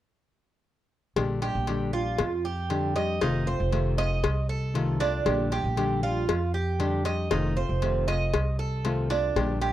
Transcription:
1.16 A#1 D3 G3 D4 G4, cowbell
1.42 G3 D4 G4, cowbell
1.55 A#1
1.67 D3 G3 D4 G4, cowbell
1.93 G3 D4 F4 G4
2.18 F2, muted nylon-string guitar stroke, cowbell
2.45 G4
2.70 D3 G3 D4 G4, cowbell
2.96 G3 D4 G4 D#5, cowbell
3.21 F1 C3 D#3 A3 C4 D#4 F4, cowbell
3.46 A3 C4 F4 C5
3.60 F1
3.72 C3 D#3 A3 C4 F4, cowbell
3.97 A3 C4 F4 D#5, cowbell
4.23 C2, muted nylon-string guitar stroke, cowbell
4.49 A4
4.74 C3 D#3 A3 C4 F4, cowbell
5.00 A3 C4 D4 F4, cowbell
5.25 A#1 D3 G3 D4 G4, cowbell
5.51 G3 D4 G4, cowbell
5.64 A#1
5.77 D3 G3 D4 G4, cowbell
6.03 G3 D4 F4 G4
6.28 F2, muted nylon-string guitar stroke, cowbell
6.54 G4
6.79 D3 G3 D4 G4, cowbell
7.05 G3 G4 D#5, cowbell
7.31 F1 C3 D#3 A3 C4 D#4 F4, cowbell
7.57 A3 C4 F4 C5
7.69 F1
7.82 C3 D#3 A3 C4 F4, cowbell
8.08 A3 C4 F4 D#5, cowbell
8.33 C2, muted nylon-string guitar stroke, cowbell
8.59 A4
8.84 C3 D#3 A3 C4 F4, cowbell
9.10 A3 C4 D4 F4, cowbell
9.36 A#1 D3 G3 D4 G4, cowbell
9.61 G3 G4, cowbell

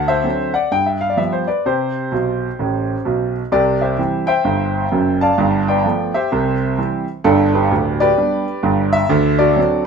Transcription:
Already playing: D2 F#5
0.08 C5 E5
0.24 D3 F#3 C4
0.54 D5 F#5
0.71 G2 G5
0.86 E5
1.01 F5
1.10 D5
1.17 F3 G3 B3 E5
1.33 C5
1.48 B4 D5
1.66 C3 G4 C5
2.12 B1 B2
2.59 A1 A2
3.05 B1 B2
3.52 C2 C3 G4 D5
3.81 G4 C5 E5
3.98 E3 G3 C4
4.27 C5 E5 G5
4.44 G1 G2
4.92 F#1 F#2
5.21 D5 F5 A5
5.38 G1 G2
5.68 B4 D5 G5
5.86 F3 A3 B3
6.14 G4 C5 E5
6.32 C2 C3
6.78 E3 G3 C4
7.24 G1 G2 D4 A4
7.53 D4 G4 B4
7.71 D1 D2
8.00 G4 B4 D5
8.18 G3 B3 D4
8.63 G1 G2
8.93 E5
9.09 D2 D3
9.39 F#4 A4 D5
9.56 F#3 C4 D4

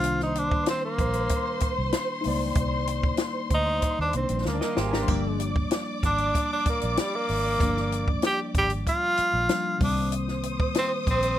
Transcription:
Already playing: C2 D#3 G3 A#3 D4 F4 C5 C6
0.04 closed hi-hat
0.20 D#4, snare
0.35 D4, closed hi-hat
0.51 kick
0.66 C4, snare, closed hi-hat
0.85 A#3
0.99 A#1, kick, closed hi-hat
1.13 closed hi-hat
1.29 kick, closed hi-hat
1.60 muted fingered electric bass stroke, kick, closed hi-hat
1.78 C2
1.92 snare, closed hi-hat
2.21 G3 D#4, open hi-hat
2.25 C#2 A#3 D5
2.55 C2, kick, closed hi-hat
2.87 closed hi-hat
3.03 kick
3.17 snare, closed hi-hat
3.50 D2, kick, closed hi-hat
3.54 D#4
3.82 kick, closed hi-hat
3.99 D#2 D4
4.12 C2 D#3 G3 A#3 D4, closed hi-hat
4.17 C4
4.29 A#1, closed hi-hat
4.45 D2 A#3, snare
4.52 D4 D5
4.61 A#3 D#4 A#4 D#5, snare
4.69 F4 F5
4.77 G#1 G4 C5 G5, snare
4.85 G#4 G#5
4.93 D4 G4 A#4 A#5, snare
5.00 C5 C6
5.04 F3 G3 D5, kick, splash
5.08 G1 A#3 D4 D6
5.40 closed hi-hat
5.56 kick
5.71 snare, closed hi-hat
6.03 G#1 D4, kick, snare, closed hi-hat
6.18 closed hi-hat
6.35 kick, closed hi-hat
6.53 D4
6.66 A#3, muted fingered electric bass stroke, kick, closed hi-hat
6.81 A#1, closed hi-hat
6.97 G3, snare, closed hi-hat
7.16 A#3
7.29 G#1, open hi-hat
7.57 G1 F3 G3, kick, closed hi-hat
7.61 A#3 D4
7.77 snare
7.92 closed hi-hat
8.08 kick
8.22 G4, snare, closed hi-hat
8.55 G#1 G4, kick, closed hi-hat
8.70 closed hi-hat
8.87 F4, kick, closed hi-hat
9.17 muted fingered electric bass stroke, closed hi-hat
9.34 A#1
9.47 F3 G3 A#3 D4, snare, closed hi-hat
9.77 C2 D#3 G3 C5 D#6, kick, open hi-hat
9.82 A#3 C4 D4
10.12 closed hi-hat
10.28 snare
10.43 closed hi-hat
10.60 kick
10.75 C4, snare, closed hi-hat
11.07 A#1 C4, kick, closed hi-hat
11.23 closed hi-hat

